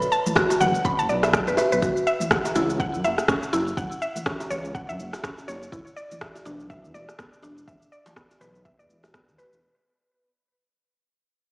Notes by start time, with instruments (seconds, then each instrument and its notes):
Already playing: kalimba B4
0.02 shaker
0.12 synth pluck A5, shaker
0.26 high conga, low conga, shaker
0.36 synth pluck F#4, kick, cross-stick, djembe tone, shaker
0.50 djembe tone, shaker
0.60 detuned saw bass F#1, synth pluck F#5, mid tom, high conga, low conga, shaker
0.75 shaker
0.85 synth pluck B5, kick, mid tom, shaker
0.99 detuned saw bass F#1, synth pluck A5, shaker
1.09 detuned saw bass B1, synth pluck D5, high conga, shaker
1.23 synth pluck E5, cross-stick, djembe tone, shaker
1.33 synth pluck D5, kick, cross-stick, high conga, shaker
1.47 detuned saw bass F#1, synth pluck B4, djembe tone, shaker
1.57 synth pluck B4, kalimba E5, djembe tone, shaker
1.72 detuned saw bass B1, synth pluck B4, shaker
1.82 detuned saw bass F#1, synth pluck F#4, kick, shaker
1.97 shaker
2.07 synth pluck E5, shaker
2.20 high conga, low conga, shaker
2.31 synth pluck F#5, kick, cross-stick, djembe tone, shaker
2.45 djembe tone, shaker
2.55 detuned saw bass C#2, synth pluck E4, djembe slap, high conga, low conga, shaker
2.70 shaker
2.80 synth pluck F#5, kick, high conga, shaker
2.94 detuned saw bass F#2, shaker
3.04 detuned saw bass F#1, synth pluck E5, high conga, djembe tone, shaker
3.18 cross-stick, shaker
3.28 synth pluck C#4, kick, cross-stick, shaker
3.43 shaker
3.53 detuned saw bass F#1, synth pluck E4, djembe tone, shaker
3.68 shaker
3.77 detuned saw bass F#1, synth pluck F#5, kick, shaker
3.92 shaker
4.02 synth pluck E5, shaker
4.16 high conga, low conga, shaker
4.26 synth pluck C#4, kick, cross-stick, djembe tone, shaker
4.40 djembe tone, shaker
4.50 detuned saw bass C#2, synth pluck C#5, high conga, low conga, shaker
4.65 shaker
4.75 synth pluck F#5, kick, shaker
4.89 detuned saw bass F#2, synth pluck E5, shaker
4.99 detuned saw bass F#1, high conga, shaker
5.13 cross-stick, djembe tone, shaker
5.24 synth pluck C#4, kick, cross-stick, high conga, shaker
5.38 djembe tone, shaker
5.48 detuned saw bass F#1, synth pluck C#5, djembe tone, shaker
5.63 shaker
5.72 detuned saw bass E1, synth pluck E4, kick, shaker
5.87 shaker
5.96 synth pluck D5, shaker
6.11 high conga, low conga, shaker
6.21 synth pluck E5, kick, cross-stick, djembe tone, shaker
6.35 djembe tone, shaker
6.45 detuned saw bass B1, synth pluck D4, djembe slap, high conga, low conga, shaker
6.60 shaker
6.70 synth pluck E5, kick, high conga, shaker
6.84 detuned saw bass E2, shaker
6.94 detuned saw bass E1, synth pluck D5, high conga, djembe tone, shaker
7.09 cross-stick, shaker
7.19 synth pluck B3, kick, cross-stick, shaker
7.33 shaker
7.42 detuned saw bass E1, synth pluck D4, djembe tone, shaker
7.58 shaker
7.68 detuned saw bass E1, synth pluck E5, kick, shaker
7.82 shaker
7.92 synth pluck D5, shaker
8.06 djembe slap, high conga, low conga, shaker
8.16 synth pluck B3, kick, cross-stick, djembe tone, shaker
8.31 djembe tone, shaker
8.41 detuned saw bass B1, synth pluck B4, djembe slap, high conga, low conga, shaker
8.55 shaker
8.65 synth pluck E5, kick, shaker
8.79 detuned saw bass E2, synth pluck D5, shaker
8.89 detuned saw bass E1, high conga, shaker
9.03 cross-stick, djembe tone, low conga, shaker
9.14 synth pluck B3, kick, cross-stick, high conga, shaker
9.28 detuned saw bass E2, djembe tone, shaker
9.38 synth pluck B4, high conga, djembe tone, shaker
9.53 detuned saw bass E1, shaker